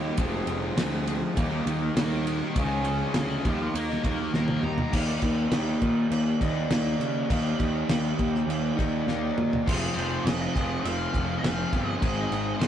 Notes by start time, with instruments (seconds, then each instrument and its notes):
Already playing: picked electric bass D#2, overdriven electric guitar D#3, steel-string acoustic guitar A#3 D#4 G4
0.01 distorted electric guitar G3 A#3 D#4
0.16 picked electric bass F1, steel-string acoustic guitar F2 C3 F3 G#3 C4 G#4, distorted electric guitar F3 G#3 C4 F4, kick, ride
0.47 picked electric bass F1, ride
0.61 distorted electric guitar G#3 C4 F4
0.76 picked electric bass D2, distorted electric guitar F3 G#3 C4 F4, steel-string acoustic guitar F3 G#3 C4, snare, ride
0.80 steel-string acoustic guitar G#4
1.06 distorted electric guitar F3 G#3 C4 F4, steel-string acoustic guitar F3 G#3 C4 G#4, ride
1.21 muted distorted electric guitar stroke
1.35 picked electric bass D#2, distorted electric guitar D#3 G3 A#3 D#4, steel-string acoustic guitar D#3 A#3 D#4 G4, kick, ride
1.50 distorted electric guitar G3 A#3 D#4
1.66 picked electric bass D#2, distorted electric guitar D#3 G3 A#3 D#4, ride
1.82 muted distorted electric guitar stroke
1.95 picked electric bass D#2, steel-string acoustic guitar D#3 A#3 D#4 G4, distorted electric guitar D#3 G3 A#3 D#4, lead electric guitar A#4 D#5, snare, ride
2.11 distorted electric guitar G3 A#3 D#4
2.26 steel-string acoustic guitar A#3 D#4 G4, lead electric guitar A#4 D#5, ride
2.41 distorted electric guitar G3 A#3 D#4
2.55 picked electric bass C#2, distorted electric guitar C#3 G#3 C#4 F4, steel-string acoustic guitar C#3 F3 G#3 C#4 G#4, overdriven electric guitar F4, lead electric guitar A#4 D#5, kick, ride
2.85 lead electric guitar C#5 F5, ride
3.01 distorted electric guitar G#3 C#4 F4
3.13 picked electric bass D2, distorted electric guitar C#3 G#3, steel-string acoustic guitar F3 G#3, lead electric guitar C#5 F5, snare, ride
3.18 steel-string acoustic guitar C#4 G#4, distorted electric guitar C#4 F4
3.42 picked electric bass D#2, overdriven electric guitar D#3, distorted electric guitar D#3, steel-string acoustic guitar A#3 D#4 G4, lead electric guitar C5, kick, ride
3.46 steel-string acoustic guitar D#3, distorted electric guitar G3 A#3 D#4, lead electric guitar F5
3.61 muted distorted electric guitar stroke
3.74 picked electric bass D#2, lead electric guitar F5 A#5, ride
3.90 distorted electric guitar G3 A#3 D#4, snare
4.03 picked electric bass D#2, distorted electric guitar D#3 G3 A#3 D#4, lead electric guitar F5 A#5, kick, ride
4.20 muted distorted electric guitar stroke
4.33 picked electric bass D#2, distorted electric guitar D#3 G3 A#3 D#4, steel-string acoustic guitar D#3 A#3 D#4 G4, lead electric guitar F5 A#5, snare
4.48 distorted electric guitar G3 A#3 D#4, high tom
4.63 picked electric bass D#2, overdriven electric guitar D#3, steel-string acoustic guitar A#3 D#4 G4, lead electric guitar A#5, mid tom
4.78 distorted electric guitar G3 A#3 D#4, floor tom
4.92 picked electric bass D#2, steel-string acoustic guitar D#3 A#3 D#4 G4, distorted electric guitar D#3 A#3 D#4, overdriven electric guitar G3, kick, crash
4.97 overdriven electric guitar A#4
5.22 picked electric bass D#2, steel-string acoustic guitar A#3 D#4 G4, kick, crash
5.51 picked electric bass D#2, steel-string acoustic guitar D#3 A#3 D#4 G4, snare, crash
5.82 picked electric bass A#2, steel-string acoustic guitar A#3 D#4 G4, kick, crash
6.10 picked electric bass D#2, steel-string acoustic guitar D#3 A#3 D#4 G4, crash
6.40 picked electric bass D#2, steel-string acoustic guitar A#3 D#4 G4, distorted electric guitar A#3 D#4, kick, crash
6.44 distorted electric guitar D#3
6.69 picked electric bass D#2, distorted electric guitar D#3 A#3 D#4, steel-string acoustic guitar D#3 A#3 D#4 G4, snare, crash
7.00 picked electric bass C#3, snare, crash
7.28 picked electric bass D#2, distorted electric guitar D#3 A#3 D#4, steel-string acoustic guitar D#3 A#3 D#4 G4, overdriven electric guitar G3 A#4, kick, crash
7.59 picked electric bass D#2, steel-string acoustic guitar A#3 D#4 G4, kick, crash
7.89 picked electric bass D#2, steel-string acoustic guitar D#3 A#3 D#4 G4, snare, crash
8.18 picked electric bass D#2, steel-string acoustic guitar A#3 D#4 G4, kick, crash
8.35 snare
8.47 picked electric bass D#2, steel-string acoustic guitar D#3 A#3 D#4 G4, crash
8.77 picked electric bass D#2, distorted electric guitar D#3 A#3 D#4, steel-string acoustic guitar A#3 D#4 G4, kick, crash
9.07 picked electric bass D#2, distorted electric guitar D#3 A#3 D#4, steel-string acoustic guitar D#3 A#3 D#4 G4, snare
9.38 picked electric bass A#2, mid tom
9.53 floor tom
9.66 picked electric bass F1, steel-string acoustic guitar F2 C3 D#3 G#3 C4 G#4, distorted electric guitar F2 C3 F3, overdriven electric guitar F3 F4, lead electric guitar C5, kick, crash
9.95 picked electric bass F1, distorted electric guitar F2 C3 F3, overdriven electric guitar F3 C4 F4 G#4, lead electric guitar C5, crash
10.23 picked electric bass F1, distorted electric guitar F2 C3 F3, steel-string acoustic guitar D#3, overdriven electric guitar F3, lead electric guitar D#5
10.27 steel-string acoustic guitar G#3 C4 G#4, overdriven electric guitar F4, snare, crash
10.54 picked electric bass F1, distorted electric guitar F2 C3 F3, overdriven electric guitar F3 F4, steel-string acoustic guitar G#3 C4 G#4, kick, crash
10.58 steel-string acoustic guitar D#3
10.67 lead electric guitar D#5
10.80 distorted electric guitar F2 C3 F3, overdriven electric guitar F3, lead electric guitar F5
10.85 picked electric bass F1, overdriven electric guitar C4 F4 G#4, crash
11.13 picked electric bass F1, distorted electric guitar F2 C3 F3, overdriven electric guitar F3 C4 F4 G#4, kick, crash
11.39 distorted electric guitar F2 C3, lead electric guitar F5
11.43 picked electric bass F1, steel-string acoustic guitar D#3 G#3 C4 G#4, distorted electric guitar F3, overdriven electric guitar F3 F4, snare, crash
11.72 picked electric bass G1, distorted electric guitar F2 C3 F3, steel-string acoustic guitar D#3 G#3 C4 G#4, overdriven electric guitar F3 F4, kick, crash
11.98 distorted electric guitar G#2 D#3, steel-string acoustic guitar G#2, lead electric guitar D#5
12.02 picked electric bass G#1, steel-string acoustic guitar D#3 G#3 C4 D#4 G#4, distorted electric guitar G#3, kick, crash
12.31 picked electric bass G#1, overdriven electric guitar G#2 D#3 G#3 C4 D#4 G#4, distorted electric guitar G#2 D#3 G#3, crash
12.59 picked electric bass G#1, overdriven electric guitar G#2 D#3, distorted electric guitar G#2 D#3 G#3, steel-string acoustic guitar G#3 C4 D#4 G#4, lead electric guitar C5, snare, crash